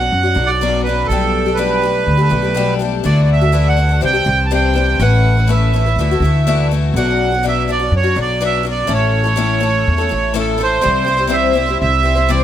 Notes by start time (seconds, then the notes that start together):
Already playing: F#5
0.00 C#4 D4 F#4
0.12 F#2
0.23 C#4 D4 F#4
0.34 B1 F#3 C#4 D4 F#4
0.46 F#4 D5
0.51 C#4 D4
0.61 B2 F#3 C#4 D4 F#4
0.83 F#3 D4 B4
0.89 C#4 F#4
1.06 B1 B2 A4
1.11 G3 A3 D4 G4
1.46 A3 D4 G4
1.54 B2 G3 A3 B4
1.59 D4 G4
1.82 G3 A3 D4 G4
2.06 D2
2.17 A3 D4 G4
2.29 B1 G3 A3 D4 G4
2.42 A3 D4 G4
2.54 B2 G3 A3 D4 G4
2.79 G3 A3 D4 G4
3.04 D2 D3 E3 A3 D4 F#4 D5
3.23 D5
3.32 E5
3.41 A3 D4 F#4
3.52 D3 E3 A3 D4 F#4
3.68 F#5
3.77 E3 A3 D4 F#4
3.89 A3 D4 F#4
4.01 C2 C3 E3 C4 D4 G4 G5
4.13 C4 D4 G4
4.25 C2 E3 C4 D4 G4
4.46 A5
4.51 C3 E3 C4 D4 G4 G5
4.74 E3 C4 D4 G4
4.99 A1 A3 C#4 E4 B4 F#5
5.37 C#4 E4 B4
5.47 A3 C#4 E4 B4 E5
5.73 A3 C#4 E4 B4
5.86 C#4 E4 B4
5.96 D2 D3 E3 A3
6.00 E4 F#4
6.11 A3 E4 F#4
6.20 D2 E3
6.24 A3 E4 F#4
6.47 D3 E3 A3 E4 F#4
6.71 E3 A3 E4 F#4
6.94 B1 B2 F#3 D4 F#5
6.98 C#4 F#4
7.32 C#4 D4 F#4
7.43 B2 F#3 C#4 D4 F#4
7.48 E5
7.68 F#3 C#4 D4 F#4 D5
7.79 C#4 D4 F#4
7.92 F#2
7.96 C#5
8.03 C#4 D4 F#4
8.16 B1 F#3 C#4 D4 F#4
8.21 D5
8.40 B2 F#3 C#4 D4 F#4
8.45 E5
8.63 F#3 C#4 D4 F#4
8.71 D5
8.87 A1 A2 E3 A3 C#4 E4 A4
8.94 C#5
9.24 A3 C#4 E4 A4
9.36 A2 E3 A3 C#4 E4 A4
9.60 A3 C#4 E4 A4
9.87 E2
9.98 A3 C#4 E4 A4
10.09 A1 A3 C#4 E4 A4
10.34 A2 E3 A3 C#4 E4 A4
10.39 A4
10.58 A3 C#4 E4 A4
10.63 C5
10.81 C3 E3 G3 C4 E4 C5
10.85 C2
11.05 G3 C4 E4 C5
11.17 G3 C4 E4 C5
11.27 C3 E3 G3 C4 E4 C5
11.33 E5
11.53 G3 C4 E4 C5
11.66 C4 E4 C5
11.70 G3
11.81 C2 E5
12.03 G3 C4 E4 C5
12.15 G3 C4 E4 C5
12.28 C3 E3 G3 C4 E4 C5 D5